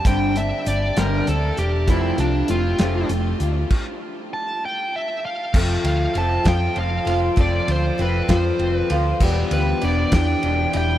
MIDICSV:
0, 0, Header, 1, 6, 480
1, 0, Start_track
1, 0, Tempo, 610376
1, 41, Time_signature, 6, 3, 24, 8
1, 8635, End_track
2, 0, Start_track
2, 0, Title_t, "Lead electric guitar"
2, 0, Program_c, 0, 29
2, 56, Note_on_c, 0, 79, 99
2, 281, Note_off_c, 0, 79, 0
2, 292, Note_on_c, 0, 76, 80
2, 519, Note_off_c, 0, 76, 0
2, 531, Note_on_c, 0, 74, 90
2, 759, Note_off_c, 0, 74, 0
2, 771, Note_on_c, 0, 70, 100
2, 999, Note_off_c, 0, 70, 0
2, 1011, Note_on_c, 0, 69, 94
2, 1238, Note_off_c, 0, 69, 0
2, 1247, Note_on_c, 0, 67, 88
2, 1476, Note_off_c, 0, 67, 0
2, 1494, Note_on_c, 0, 64, 96
2, 1720, Note_off_c, 0, 64, 0
2, 1730, Note_on_c, 0, 62, 82
2, 1958, Note_off_c, 0, 62, 0
2, 1969, Note_on_c, 0, 65, 99
2, 2431, Note_off_c, 0, 65, 0
2, 3409, Note_on_c, 0, 81, 114
2, 3638, Note_off_c, 0, 81, 0
2, 3660, Note_on_c, 0, 79, 100
2, 3883, Note_off_c, 0, 79, 0
2, 3901, Note_on_c, 0, 76, 101
2, 4124, Note_off_c, 0, 76, 0
2, 4131, Note_on_c, 0, 77, 99
2, 4359, Note_off_c, 0, 77, 0
2, 4609, Note_on_c, 0, 77, 91
2, 4852, Note_off_c, 0, 77, 0
2, 4857, Note_on_c, 0, 81, 111
2, 5096, Note_off_c, 0, 81, 0
2, 5100, Note_on_c, 0, 79, 108
2, 5314, Note_off_c, 0, 79, 0
2, 5339, Note_on_c, 0, 77, 94
2, 5577, Note_off_c, 0, 77, 0
2, 5585, Note_on_c, 0, 77, 99
2, 5647, Note_off_c, 0, 77, 0
2, 5826, Note_on_c, 0, 74, 97
2, 6060, Note_off_c, 0, 74, 0
2, 6064, Note_on_c, 0, 72, 85
2, 6300, Note_off_c, 0, 72, 0
2, 6306, Note_on_c, 0, 71, 82
2, 6535, Note_off_c, 0, 71, 0
2, 6538, Note_on_c, 0, 72, 76
2, 6892, Note_off_c, 0, 72, 0
2, 6892, Note_on_c, 0, 71, 76
2, 7039, Note_off_c, 0, 71, 0
2, 7495, Note_on_c, 0, 71, 78
2, 7736, Note_off_c, 0, 71, 0
2, 7740, Note_on_c, 0, 74, 91
2, 7978, Note_off_c, 0, 74, 0
2, 7981, Note_on_c, 0, 79, 97
2, 8459, Note_off_c, 0, 79, 0
2, 8469, Note_on_c, 0, 79, 110
2, 8635, Note_off_c, 0, 79, 0
2, 8635, End_track
3, 0, Start_track
3, 0, Title_t, "Steel-string acoustic guitar"
3, 0, Program_c, 1, 25
3, 40, Note_on_c, 1, 43, 74
3, 46, Note_on_c, 1, 50, 78
3, 50, Note_on_c, 1, 55, 85
3, 52, Note_on_c, 1, 60, 89
3, 57, Note_on_c, 1, 62, 90
3, 62, Note_on_c, 1, 67, 91
3, 267, Note_off_c, 1, 67, 0
3, 277, Note_off_c, 1, 62, 0
3, 277, Note_on_c, 1, 67, 60
3, 280, Note_off_c, 1, 43, 0
3, 284, Note_off_c, 1, 50, 0
3, 285, Note_off_c, 1, 55, 0
3, 286, Note_off_c, 1, 60, 0
3, 286, Note_on_c, 1, 62, 49
3, 295, Note_on_c, 1, 60, 49
3, 299, Note_on_c, 1, 55, 46
3, 502, Note_off_c, 1, 55, 0
3, 512, Note_on_c, 1, 55, 60
3, 516, Note_off_c, 1, 60, 0
3, 519, Note_off_c, 1, 67, 0
3, 523, Note_off_c, 1, 62, 0
3, 525, Note_on_c, 1, 60, 67
3, 532, Note_on_c, 1, 62, 66
3, 537, Note_on_c, 1, 67, 70
3, 750, Note_off_c, 1, 67, 0
3, 753, Note_off_c, 1, 62, 0
3, 756, Note_off_c, 1, 55, 0
3, 757, Note_off_c, 1, 60, 0
3, 760, Note_on_c, 1, 67, 69
3, 762, Note_on_c, 1, 62, 68
3, 767, Note_on_c, 1, 60, 66
3, 770, Note_on_c, 1, 55, 67
3, 773, Note_on_c, 1, 50, 69
3, 777, Note_on_c, 1, 43, 59
3, 992, Note_off_c, 1, 55, 0
3, 1000, Note_off_c, 1, 67, 0
3, 1001, Note_off_c, 1, 62, 0
3, 1001, Note_on_c, 1, 55, 46
3, 1004, Note_off_c, 1, 60, 0
3, 1007, Note_off_c, 1, 50, 0
3, 1009, Note_off_c, 1, 43, 0
3, 1012, Note_on_c, 1, 60, 53
3, 1019, Note_on_c, 1, 62, 61
3, 1027, Note_on_c, 1, 67, 59
3, 1221, Note_off_c, 1, 67, 0
3, 1231, Note_on_c, 1, 67, 47
3, 1232, Note_off_c, 1, 62, 0
3, 1241, Note_off_c, 1, 55, 0
3, 1242, Note_off_c, 1, 60, 0
3, 1242, Note_on_c, 1, 62, 47
3, 1251, Note_on_c, 1, 60, 45
3, 1259, Note_on_c, 1, 55, 43
3, 1473, Note_off_c, 1, 60, 0
3, 1474, Note_off_c, 1, 55, 0
3, 1475, Note_on_c, 1, 53, 89
3, 1476, Note_off_c, 1, 67, 0
3, 1477, Note_on_c, 1, 57, 92
3, 1481, Note_off_c, 1, 62, 0
3, 1483, Note_on_c, 1, 60, 84
3, 1490, Note_on_c, 1, 67, 85
3, 1711, Note_off_c, 1, 67, 0
3, 1718, Note_off_c, 1, 53, 0
3, 1719, Note_off_c, 1, 57, 0
3, 1721, Note_on_c, 1, 67, 50
3, 1722, Note_off_c, 1, 60, 0
3, 1734, Note_on_c, 1, 65, 44
3, 1746, Note_on_c, 1, 60, 46
3, 1956, Note_on_c, 1, 57, 66
3, 1957, Note_off_c, 1, 60, 0
3, 1960, Note_off_c, 1, 67, 0
3, 1966, Note_on_c, 1, 60, 72
3, 1967, Note_off_c, 1, 65, 0
3, 1975, Note_on_c, 1, 65, 64
3, 1982, Note_on_c, 1, 67, 70
3, 2186, Note_off_c, 1, 67, 0
3, 2192, Note_off_c, 1, 65, 0
3, 2194, Note_off_c, 1, 60, 0
3, 2195, Note_on_c, 1, 67, 78
3, 2198, Note_off_c, 1, 57, 0
3, 2202, Note_on_c, 1, 65, 71
3, 2204, Note_on_c, 1, 60, 59
3, 2207, Note_on_c, 1, 57, 67
3, 2213, Note_on_c, 1, 53, 60
3, 2424, Note_off_c, 1, 57, 0
3, 2434, Note_off_c, 1, 60, 0
3, 2434, Note_on_c, 1, 57, 51
3, 2438, Note_off_c, 1, 67, 0
3, 2441, Note_off_c, 1, 65, 0
3, 2444, Note_on_c, 1, 60, 55
3, 2446, Note_off_c, 1, 53, 0
3, 2452, Note_on_c, 1, 65, 56
3, 2460, Note_on_c, 1, 67, 68
3, 2671, Note_off_c, 1, 67, 0
3, 2677, Note_off_c, 1, 57, 0
3, 2681, Note_on_c, 1, 67, 57
3, 2682, Note_off_c, 1, 60, 0
3, 2683, Note_off_c, 1, 65, 0
3, 2693, Note_on_c, 1, 65, 48
3, 2707, Note_on_c, 1, 60, 42
3, 2921, Note_off_c, 1, 67, 0
3, 2926, Note_off_c, 1, 65, 0
3, 2933, Note_off_c, 1, 60, 0
3, 4356, Note_on_c, 1, 53, 78
3, 4361, Note_on_c, 1, 60, 81
3, 4368, Note_on_c, 1, 65, 89
3, 4374, Note_on_c, 1, 69, 94
3, 4818, Note_off_c, 1, 53, 0
3, 4827, Note_on_c, 1, 53, 58
3, 4829, Note_off_c, 1, 60, 0
3, 4838, Note_off_c, 1, 65, 0
3, 4839, Note_on_c, 1, 60, 61
3, 4843, Note_off_c, 1, 69, 0
3, 4848, Note_on_c, 1, 65, 69
3, 4853, Note_on_c, 1, 69, 66
3, 5058, Note_off_c, 1, 69, 0
3, 5067, Note_on_c, 1, 69, 80
3, 5069, Note_off_c, 1, 65, 0
3, 5072, Note_off_c, 1, 60, 0
3, 5074, Note_off_c, 1, 53, 0
3, 5079, Note_on_c, 1, 65, 73
3, 5081, Note_on_c, 1, 60, 66
3, 5086, Note_on_c, 1, 53, 61
3, 5532, Note_off_c, 1, 69, 0
3, 5542, Note_on_c, 1, 69, 51
3, 5548, Note_off_c, 1, 65, 0
3, 5557, Note_off_c, 1, 60, 0
3, 5558, Note_on_c, 1, 65, 45
3, 5564, Note_off_c, 1, 53, 0
3, 5566, Note_on_c, 1, 60, 46
3, 5787, Note_on_c, 1, 53, 84
3, 5788, Note_off_c, 1, 60, 0
3, 5790, Note_off_c, 1, 65, 0
3, 5792, Note_off_c, 1, 69, 0
3, 5797, Note_on_c, 1, 60, 90
3, 5800, Note_on_c, 1, 65, 85
3, 5806, Note_on_c, 1, 69, 96
3, 6265, Note_off_c, 1, 53, 0
3, 6274, Note_off_c, 1, 60, 0
3, 6274, Note_on_c, 1, 53, 70
3, 6281, Note_off_c, 1, 65, 0
3, 6283, Note_on_c, 1, 60, 68
3, 6284, Note_off_c, 1, 69, 0
3, 6292, Note_on_c, 1, 65, 70
3, 6299, Note_on_c, 1, 69, 73
3, 6504, Note_off_c, 1, 69, 0
3, 6508, Note_off_c, 1, 65, 0
3, 6513, Note_on_c, 1, 69, 72
3, 6517, Note_off_c, 1, 60, 0
3, 6518, Note_off_c, 1, 53, 0
3, 6518, Note_on_c, 1, 65, 69
3, 6527, Note_on_c, 1, 60, 70
3, 6528, Note_on_c, 1, 53, 58
3, 6990, Note_off_c, 1, 69, 0
3, 6999, Note_on_c, 1, 69, 51
3, 7000, Note_off_c, 1, 65, 0
3, 7005, Note_off_c, 1, 53, 0
3, 7005, Note_off_c, 1, 60, 0
3, 7012, Note_on_c, 1, 65, 52
3, 7021, Note_on_c, 1, 60, 40
3, 7239, Note_on_c, 1, 52, 94
3, 7241, Note_off_c, 1, 69, 0
3, 7244, Note_off_c, 1, 60, 0
3, 7245, Note_on_c, 1, 55, 109
3, 7247, Note_off_c, 1, 65, 0
3, 7247, Note_on_c, 1, 59, 95
3, 7253, Note_on_c, 1, 62, 100
3, 7259, Note_on_c, 1, 67, 107
3, 7713, Note_off_c, 1, 55, 0
3, 7721, Note_off_c, 1, 52, 0
3, 7721, Note_off_c, 1, 59, 0
3, 7722, Note_on_c, 1, 55, 69
3, 7730, Note_on_c, 1, 59, 73
3, 7731, Note_off_c, 1, 67, 0
3, 7736, Note_off_c, 1, 62, 0
3, 7739, Note_on_c, 1, 62, 71
3, 7749, Note_on_c, 1, 67, 73
3, 7956, Note_off_c, 1, 67, 0
3, 7963, Note_off_c, 1, 55, 0
3, 7963, Note_off_c, 1, 62, 0
3, 7965, Note_on_c, 1, 67, 73
3, 7967, Note_off_c, 1, 59, 0
3, 7973, Note_on_c, 1, 62, 77
3, 7977, Note_on_c, 1, 59, 66
3, 7982, Note_on_c, 1, 52, 61
3, 7982, Note_on_c, 1, 55, 66
3, 8436, Note_off_c, 1, 67, 0
3, 8445, Note_on_c, 1, 67, 48
3, 8450, Note_off_c, 1, 59, 0
3, 8453, Note_off_c, 1, 52, 0
3, 8453, Note_off_c, 1, 55, 0
3, 8458, Note_off_c, 1, 62, 0
3, 8461, Note_on_c, 1, 62, 45
3, 8468, Note_on_c, 1, 59, 38
3, 8635, Note_off_c, 1, 59, 0
3, 8635, Note_off_c, 1, 62, 0
3, 8635, Note_off_c, 1, 67, 0
3, 8635, End_track
4, 0, Start_track
4, 0, Title_t, "Clean electric guitar"
4, 0, Program_c, 2, 27
4, 284, Note_on_c, 2, 43, 72
4, 286, Note_on_c, 2, 50, 84
4, 498, Note_off_c, 2, 43, 0
4, 499, Note_off_c, 2, 50, 0
4, 526, Note_on_c, 2, 43, 66
4, 527, Note_on_c, 2, 50, 74
4, 739, Note_off_c, 2, 43, 0
4, 740, Note_off_c, 2, 50, 0
4, 1001, Note_on_c, 2, 43, 80
4, 1003, Note_on_c, 2, 50, 81
4, 1217, Note_off_c, 2, 43, 0
4, 1218, Note_off_c, 2, 50, 0
4, 1715, Note_on_c, 2, 53, 71
4, 1716, Note_on_c, 2, 57, 83
4, 1933, Note_off_c, 2, 53, 0
4, 1934, Note_off_c, 2, 57, 0
4, 1950, Note_on_c, 2, 53, 63
4, 2171, Note_off_c, 2, 53, 0
4, 2434, Note_on_c, 2, 53, 73
4, 2653, Note_off_c, 2, 53, 0
4, 4357, Note_on_c, 2, 41, 88
4, 5320, Note_on_c, 2, 60, 70
4, 5559, Note_off_c, 2, 41, 0
4, 5801, Note_on_c, 2, 41, 82
4, 6272, Note_off_c, 2, 60, 0
4, 6761, Note_on_c, 2, 60, 77
4, 7002, Note_off_c, 2, 41, 0
4, 7240, Note_on_c, 2, 40, 86
4, 7242, Note_off_c, 2, 60, 0
4, 8208, Note_on_c, 2, 62, 75
4, 8441, Note_on_c, 2, 64, 77
4, 8442, Note_off_c, 2, 40, 0
4, 8635, Note_off_c, 2, 62, 0
4, 8635, Note_off_c, 2, 64, 0
4, 8635, End_track
5, 0, Start_track
5, 0, Title_t, "Fingered electric bass"
5, 0, Program_c, 3, 33
5, 40, Note_on_c, 3, 31, 91
5, 398, Note_off_c, 3, 31, 0
5, 522, Note_on_c, 3, 31, 92
5, 700, Note_off_c, 3, 31, 0
5, 760, Note_on_c, 3, 31, 98
5, 938, Note_off_c, 3, 31, 0
5, 1005, Note_on_c, 3, 38, 83
5, 1182, Note_off_c, 3, 38, 0
5, 1243, Note_on_c, 3, 28, 88
5, 1476, Note_off_c, 3, 28, 0
5, 1476, Note_on_c, 3, 29, 98
5, 1656, Note_off_c, 3, 29, 0
5, 1716, Note_on_c, 3, 36, 90
5, 1896, Note_off_c, 3, 36, 0
5, 1961, Note_on_c, 3, 29, 96
5, 2139, Note_off_c, 3, 29, 0
5, 2194, Note_on_c, 3, 29, 97
5, 2375, Note_off_c, 3, 29, 0
5, 2433, Note_on_c, 3, 29, 90
5, 2614, Note_off_c, 3, 29, 0
5, 2676, Note_on_c, 3, 38, 95
5, 2856, Note_off_c, 3, 38, 0
5, 4358, Note_on_c, 3, 29, 104
5, 4525, Note_off_c, 3, 29, 0
5, 4593, Note_on_c, 3, 38, 87
5, 4761, Note_off_c, 3, 38, 0
5, 4837, Note_on_c, 3, 29, 90
5, 5004, Note_off_c, 3, 29, 0
5, 5077, Note_on_c, 3, 41, 98
5, 5244, Note_off_c, 3, 41, 0
5, 5320, Note_on_c, 3, 29, 82
5, 5486, Note_off_c, 3, 29, 0
5, 5552, Note_on_c, 3, 29, 86
5, 5721, Note_off_c, 3, 29, 0
5, 5796, Note_on_c, 3, 29, 102
5, 5964, Note_off_c, 3, 29, 0
5, 6038, Note_on_c, 3, 38, 92
5, 6205, Note_off_c, 3, 38, 0
5, 6282, Note_on_c, 3, 29, 101
5, 6448, Note_off_c, 3, 29, 0
5, 6518, Note_on_c, 3, 41, 104
5, 6685, Note_off_c, 3, 41, 0
5, 6755, Note_on_c, 3, 29, 94
5, 6923, Note_off_c, 3, 29, 0
5, 7001, Note_on_c, 3, 38, 96
5, 7167, Note_off_c, 3, 38, 0
5, 7241, Note_on_c, 3, 28, 105
5, 7407, Note_off_c, 3, 28, 0
5, 7479, Note_on_c, 3, 38, 95
5, 7646, Note_off_c, 3, 38, 0
5, 7729, Note_on_c, 3, 28, 105
5, 7892, Note_off_c, 3, 28, 0
5, 7959, Note_on_c, 3, 40, 106
5, 8126, Note_off_c, 3, 40, 0
5, 8206, Note_on_c, 3, 28, 93
5, 8371, Note_off_c, 3, 28, 0
5, 8449, Note_on_c, 3, 28, 94
5, 8613, Note_off_c, 3, 28, 0
5, 8635, End_track
6, 0, Start_track
6, 0, Title_t, "Drums"
6, 39, Note_on_c, 9, 36, 112
6, 39, Note_on_c, 9, 42, 97
6, 117, Note_off_c, 9, 36, 0
6, 118, Note_off_c, 9, 42, 0
6, 280, Note_on_c, 9, 42, 77
6, 359, Note_off_c, 9, 42, 0
6, 521, Note_on_c, 9, 42, 68
6, 600, Note_off_c, 9, 42, 0
6, 759, Note_on_c, 9, 42, 89
6, 767, Note_on_c, 9, 38, 92
6, 837, Note_off_c, 9, 42, 0
6, 846, Note_off_c, 9, 38, 0
6, 999, Note_on_c, 9, 42, 73
6, 1078, Note_off_c, 9, 42, 0
6, 1237, Note_on_c, 9, 42, 60
6, 1316, Note_off_c, 9, 42, 0
6, 1475, Note_on_c, 9, 42, 85
6, 1476, Note_on_c, 9, 36, 100
6, 1554, Note_off_c, 9, 42, 0
6, 1555, Note_off_c, 9, 36, 0
6, 1714, Note_on_c, 9, 42, 74
6, 1793, Note_off_c, 9, 42, 0
6, 1951, Note_on_c, 9, 42, 69
6, 2030, Note_off_c, 9, 42, 0
6, 2191, Note_on_c, 9, 42, 81
6, 2200, Note_on_c, 9, 38, 111
6, 2270, Note_off_c, 9, 42, 0
6, 2278, Note_off_c, 9, 38, 0
6, 2433, Note_on_c, 9, 42, 59
6, 2511, Note_off_c, 9, 42, 0
6, 2674, Note_on_c, 9, 42, 59
6, 2752, Note_off_c, 9, 42, 0
6, 2913, Note_on_c, 9, 49, 96
6, 2915, Note_on_c, 9, 36, 98
6, 2992, Note_off_c, 9, 49, 0
6, 2994, Note_off_c, 9, 36, 0
6, 4355, Note_on_c, 9, 49, 119
6, 4356, Note_on_c, 9, 36, 124
6, 4434, Note_off_c, 9, 49, 0
6, 4435, Note_off_c, 9, 36, 0
6, 4597, Note_on_c, 9, 51, 84
6, 4675, Note_off_c, 9, 51, 0
6, 4836, Note_on_c, 9, 51, 73
6, 4915, Note_off_c, 9, 51, 0
6, 5074, Note_on_c, 9, 51, 96
6, 5076, Note_on_c, 9, 36, 79
6, 5083, Note_on_c, 9, 38, 104
6, 5153, Note_off_c, 9, 51, 0
6, 5154, Note_off_c, 9, 36, 0
6, 5161, Note_off_c, 9, 38, 0
6, 5314, Note_on_c, 9, 51, 73
6, 5393, Note_off_c, 9, 51, 0
6, 5560, Note_on_c, 9, 51, 71
6, 5639, Note_off_c, 9, 51, 0
6, 5795, Note_on_c, 9, 51, 92
6, 5797, Note_on_c, 9, 36, 106
6, 5874, Note_off_c, 9, 51, 0
6, 5876, Note_off_c, 9, 36, 0
6, 6040, Note_on_c, 9, 51, 73
6, 6119, Note_off_c, 9, 51, 0
6, 6282, Note_on_c, 9, 51, 65
6, 6361, Note_off_c, 9, 51, 0
6, 6518, Note_on_c, 9, 36, 69
6, 6519, Note_on_c, 9, 51, 90
6, 6528, Note_on_c, 9, 38, 107
6, 6597, Note_off_c, 9, 36, 0
6, 6598, Note_off_c, 9, 51, 0
6, 6607, Note_off_c, 9, 38, 0
6, 6758, Note_on_c, 9, 51, 67
6, 6836, Note_off_c, 9, 51, 0
6, 6997, Note_on_c, 9, 51, 71
6, 7076, Note_off_c, 9, 51, 0
6, 7237, Note_on_c, 9, 57, 105
6, 7238, Note_on_c, 9, 36, 106
6, 7316, Note_off_c, 9, 57, 0
6, 7317, Note_off_c, 9, 36, 0
6, 7479, Note_on_c, 9, 51, 82
6, 7557, Note_off_c, 9, 51, 0
6, 7718, Note_on_c, 9, 51, 79
6, 7797, Note_off_c, 9, 51, 0
6, 7957, Note_on_c, 9, 51, 100
6, 7959, Note_on_c, 9, 36, 75
6, 7966, Note_on_c, 9, 38, 111
6, 8036, Note_off_c, 9, 51, 0
6, 8038, Note_off_c, 9, 36, 0
6, 8044, Note_off_c, 9, 38, 0
6, 8200, Note_on_c, 9, 51, 80
6, 8278, Note_off_c, 9, 51, 0
6, 8441, Note_on_c, 9, 51, 77
6, 8519, Note_off_c, 9, 51, 0
6, 8635, End_track
0, 0, End_of_file